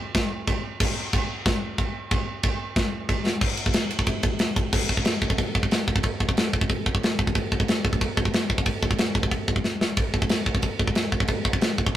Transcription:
0.15 kick, snare, china
0.47 kick, china
0.80 kick, crash, china
1.13 kick, china
1.46 kick, snare, china
1.78 kick, china
2.11 kick, china
2.43 kick, china
2.76 kick, snare, china
3.09 kick, china
3.26 snare
3.41 kick, crash
3.57 ride
3.66 kick
3.73 snare, ride
3.91 ride
3.99 kick
4.06 kick, ride
4.23 kick, ride
4.39 snare, ride
4.56 kick, ride
4.73 kick, crash
4.89 kick
4.97 kick
5.05 snare, crash
5.22 kick
5.30 kick
5.38 kick, crash
5.55 kick
5.63 kick
5.71 snare, crash
5.88 kick
5.96 kick
6.03 kick, crash
6.20 kick
6.29 kick
6.37 snare, crash
6.53 kick
6.61 kick
6.69 kick, crash
6.86 kick
6.95 kick
7.03 snare, crash
7.19 kick
7.27 kick
7.35 kick, crash
7.52 kick
7.60 kick
7.68 snare, crash
7.85 kick
7.93 kick
8.01 kick, crash
8.17 kick
8.25 kick
8.34 snare, crash
8.50 kick
8.58 kick
8.66 kick, crash
8.83 kick
8.91 kick
8.98 snare, crash
9.15 kick
9.23 kick
9.31 kick, crash
9.48 kick
9.56 kick
9.64 snare
9.81 snare
9.97 kick, crash
10.14 kick
10.22 kick
10.29 snare, crash
10.46 kick
10.55 kick
10.62 kick, crash
10.79 kick
10.88 kick
10.95 snare, crash
11.12 kick
11.20 kick
11.28 kick, crash
11.45 kick
11.53 kick
11.61 snare, crash
11.78 kick
11.86 kick

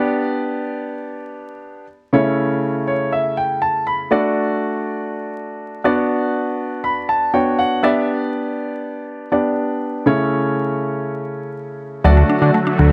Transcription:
Already playing: B3 D4 G4 D5
2.13 C#3 A3 C#4 E4 C#5
2.88 C#5
3.12 E5
3.37 G5
3.62 A5
3.87 B5
4.11 A3 D4 F#4 D5
5.84 B3 D4 F#4 D5
6.84 B5
7.09 A5
7.34 B3 D4 F#4 C#5 G5
7.59 F#5
7.83 B3 D4 G4 D5 E5
9.32 B3 D4 G4 D5
10.06 C#3 A3 C#4 E4 C#5
12.04 D2 D3 F#3 A3 D4 F#4 D5
12.17 A3
12.30 D4
12.42 D3
12.54 A3
12.67 D4
12.79 D2 F#3

